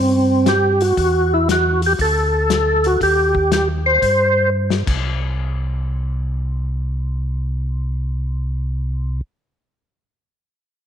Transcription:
0.00 0.93 G2 medium
0.00 0.49 C4 medium
0.46 0.82 G4 medium
0.46 snare medium
0.46 closed hi-hat soft
0.81 1.33 F#4 medium
0.81 open hi-hat soft
0.97 1.95 E2 medium
0.97 kick soft
0.97 open hi-hat soft
1.34 1.48 E4 medium
1.49 1.82 F#4 medium
1.49 snare medium
1.49 closed hi-hat soft
1.82 open hi-hat soft
1.86 1.93 G4 medium
1.99 2.97 D2 medium
1.99 2.88 A4 medium
1.99 kick soft
1.99 open hi-hat soft
2.50 snare medium
2.50 closed hi-hat soft
2.84 3.01 F#4 medium
2.84 open hi-hat soft
3.00 3.99 D#2 medium
3.00 3.52 G4 medium
3.00 kick soft
3.00 open hi-hat soft
3.35 kick soft
3.52 3.68 G4 medium
3.52 snare medium
3.52 closed hi-hat soft
3.86 4.50 C5 medium
4.02 4.83 G2 medium
4.02 kick soft
4.02 open hi-hat soft
4.70 snare medium
4.87 9.21 C2 medium
4.87 kick medium
4.87 crash medium

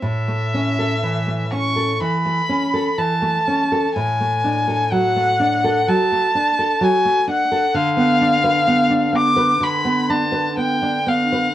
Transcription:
0.02 1.98 A2 medium
0.02 1.49 E5 medium
0.28 0.68 A3 soft
0.54 0.94 C#4 soft
0.79 1.19 A4 soft
1.03 1.43 E3 soft
1.27 1.67 A3 soft
1.52 1.92 C#4 soft
1.52 2.01 C#6 medium
1.76 2.16 A4 soft
2.01 2.40 E3 soft
2.01 3.00 B5 medium
2.25 2.64 A3 medium
2.49 2.89 C#4 medium
2.74 3.13 A4 medium
2.98 3.38 E3 medium
2.98 3.94 A5 medium
3.22 3.62 A3 medium
3.48 3.87 C#4 medium
3.72 3.96 A4 medium
3.95 5.85 A2 medium
3.95 4.93 G#5 medium
4.21 4.59 A3 medium
4.44 4.83 D4 soft
4.68 5.07 A4 medium
4.91 5.31 F#3 medium
4.91 5.90 F#5 medium
5.16 5.55 A3 medium
5.40 5.79 D4 medium
5.64 6.03 A4 medium
5.88 6.27 F#3 medium
5.88 6.84 A5 loud
6.12 6.50 A3 medium
6.35 6.73 D4 medium
6.59 6.97 A4 medium
6.81 7.19 F#3 medium
6.81 7.29 G#5 medium
7.05 7.43 A3 medium
7.28 7.66 D4 medium
7.28 7.77 F#5 medium
7.52 7.76 A4 medium
7.75 9.58 D3 medium
7.75 9.17 F5 loud
7.97 8.35 B3 medium
8.21 8.59 D4 medium
8.44 8.82 B4 medium
8.67 9.05 B3 medium
8.90 9.29 D4 medium
9.12 9.52 B3 medium
9.12 9.64 D6 loud
9.36 9.76 B4 medium
9.60 11.54 D3 medium
9.60 10.11 B5 loud
9.85 10.24 B3 medium
10.09 10.48 D4 medium
10.09 10.57 A5 medium
10.32 10.72 B4 medium
10.57 10.97 B3 medium
10.57 11.10 G5 medium
10.82 11.23 D4 medium
11.07 11.48 B3 medium
11.07 11.54 F5 medium
11.32 11.54 B4 medium

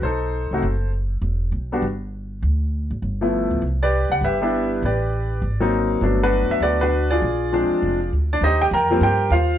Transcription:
0.02 0.47 B1 medium
0.02 0.52 D#4 soft
0.02 0.90 A4 soft
0.02 0.89 C5 medium
0.51 0.62 C2 medium
0.51 0.63 A3 soft
0.51 0.63 C4 soft
0.51 0.63 D#4 soft
0.51 0.63 F#4 medium
0.62 1.20 F#1 medium
1.22 1.50 E1 medium
1.52 1.80 B1 medium
1.72 1.82 G3 medium
1.72 1.83 B3 soft
1.72 1.83 D4 soft
1.72 1.83 F#4 medium
1.82 2.40 G1 medium
2.42 2.88 D2 medium
2.91 3.02 G#1 medium
3.02 3.48 G1 medium
3.21 3.61 F3 soft
3.21 3.61 A3 soft
3.21 3.61 B3 soft
3.21 3.61 E4 medium
3.51 3.61 C#2 medium
3.62 4.07 C2 medium
3.83 4.23 G4 medium
3.83 4.23 B4 medium
3.83 4.13 D5 medium
4.10 4.21 C#2 medium
4.10 4.24 F#5 medium
4.21 4.79 G1 medium
4.21 4.80 G4 medium
4.21 4.80 B4 medium
4.21 4.69 E5 medium
4.41 4.81 G3 medium
4.41 4.81 B3 medium
4.41 4.81 D4 soft
4.41 4.81 E4 medium
4.82 5.40 A1 medium
4.82 5.40 G4 soft
4.82 5.40 B4 soft
4.82 5.70 D5 medium
5.42 5.99 G#1 medium
5.60 6.00 F#3 medium
5.60 6.00 A#3 medium
5.60 6.01 C4 medium
5.60 6.01 D#4 medium
6.01 6.47 G1 medium
6.01 6.85 F#3 soft
6.01 6.86 A3 soft
6.01 6.86 B3 soft
6.01 6.22 D4 medium
6.23 6.78 D4 medium
6.23 6.62 F#4 medium
6.23 6.50 B4 medium
6.49 6.62 E5 medium
6.49 muted upright bass stroke soft
6.60 7.18 D2 medium
6.60 6.81 F#4 medium
6.60 6.80 B4 medium
6.60 6.81 D5 medium
6.81 7.20 D4 medium
6.81 7.21 F#4 medium
6.81 7.12 B4 medium
7.11 8.09 F4 medium
7.11 8.09 G#4 medium
7.11 8.08 D5 medium
7.22 7.67 A#1 medium
7.52 7.97 F3 medium
7.52 7.97 G#3 soft
7.52 7.98 C4 soft
7.52 7.98 D4 medium
7.70 muted upright bass stroke soft
7.82 8.10 F1 medium
8.13 8.40 D2 medium
8.33 8.43 D4 medium
8.33 8.43 D5 medium
8.41 8.71 D#2 medium
8.41 8.60 D#4 medium
8.41 8.60 G4 medium
8.41 8.60 C5 medium
8.41 8.62 D#5 medium
8.62 8.67 G4 medium
8.62 8.67 G5 medium
8.71 9.00 F2 medium
8.71 9.01 A#4 medium
8.71 9.01 G5 medium
8.71 9.01 A#5 medium
8.91 9.01 F3 medium
8.91 9.02 G3 medium
8.91 9.02 A#3 medium
8.91 9.02 C4 medium
9.01 9.30 G2 medium
9.01 9.31 G4 medium
9.01 9.31 A#4 medium
9.01 9.31 C5 medium
9.01 9.34 G5 medium
9.30 9.58 D#2 medium
9.30 9.58 F4 medium
9.30 9.58 C5 medium
9.30 9.58 F5 medium

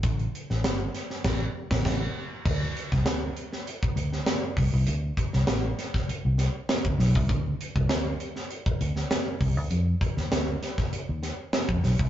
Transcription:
0.03 0.26 A1 loud
0.03 kick loud
0.03 closed hi-hat medium
0.19 closed hi-hat soft
0.35 closed hi-hat medium
0.50 0.66 A1 medium
0.50 snare soft
0.64 0.87 G1 medium
0.64 snare loud
0.64 closed hi-hat medium
0.94 snare soft
0.94 closed hi-hat medium
1.10 snare soft
1.24 1.45 A1 loud
1.24 kick loud
1.24 snare loud
1.24 crash medium
1.71 1.83 A1 loud
1.71 kick loud
1.71 snare loud
1.85 2.06 A1 loud
1.85 kick loud
1.85 snare loud
1.85 crash medium
2.46 2.68 D2 medium
2.46 kick loud
2.46 crash medium
2.77 closed hi-hat medium
2.92 3.06 C2 loud
2.92 kick medium
2.92 snare soft
3.06 3.28 D2 loud
3.06 snare loud
3.06 closed hi-hat loud
3.37 closed hi-hat medium
3.52 snare soft
3.67 closed hi-hat medium
3.83 kick loud
3.96 4.19 D2 medium
3.96 closed hi-hat medium
4.13 snare soft
4.26 snare loud
4.26 closed hi-hat medium
4.57 4.69 C2 medium
4.57 kick medium
4.57 open hi-hat medium
4.73 4.84 C2 medium
4.87 5.10 D2 loud
4.87 closed hi-hat medium
5.17 kick medium
5.17 closed hi-hat medium
5.33 5.45 C2 medium
5.33 snare soft
5.47 5.70 A1 loud
5.47 snare loud
5.47 closed hi-hat loud
5.78 snare soft
5.78 closed hi-hat medium
5.94 kick medium
5.94 snare soft
6.09 muted fingered electric bass stroke soft
6.09 closed hi-hat medium
6.25 6.47 C2 medium
6.38 snare soft
6.38 closed hi-hat medium
6.69 snare loud
6.69 closed hi-hat medium
6.85 6.95 D2 medium
6.85 kick medium
6.99 7.15 B1 loud
6.99 snare soft
6.99 open hi-hat medium
7.15 7.26 C2 medium
7.15 kick loud
7.29 7.51 D2 loud
7.29 kick loud
7.29 closed hi-hat loud
7.61 closed hi-hat medium
7.75 7.90 C2 medium
7.75 kick medium
7.89 8.12 D2 loud
7.89 snare loud
7.89 closed hi-hat loud
8.20 closed hi-hat medium
8.36 snare soft
8.51 closed hi-hat medium
8.66 kick loud
8.81 9.03 D2 medium
8.81 closed hi-hat medium
8.96 snare soft
9.11 snare loud
9.11 closed hi-hat medium
9.41 9.57 C2 medium
9.41 kick medium
9.41 open hi-hat medium
9.57 9.67 D2 medium
9.71 9.93 F2 loud
9.71 closed hi-hat medium
10.01 kick medium
10.01 closed hi-hat medium
10.17 10.28 D#2 medium
10.17 snare soft
10.32 10.54 D2 loud
10.32 snare loud
10.32 closed hi-hat loud
10.62 snare soft
10.62 closed hi-hat medium
10.78 kick medium
10.78 snare soft
10.93 muted fingered electric bass stroke soft
10.93 closed hi-hat medium
11.09 11.31 D#2 medium
11.23 snare soft
11.23 closed hi-hat medium
11.53 snare loud
11.53 closed hi-hat medium
11.69 11.79 F2 medium
11.69 kick loud
11.83 11.96 B1 loud
11.83 snare soft
11.83 open hi-hat medium
11.99 12.10 C2 medium
11.99 kick loud

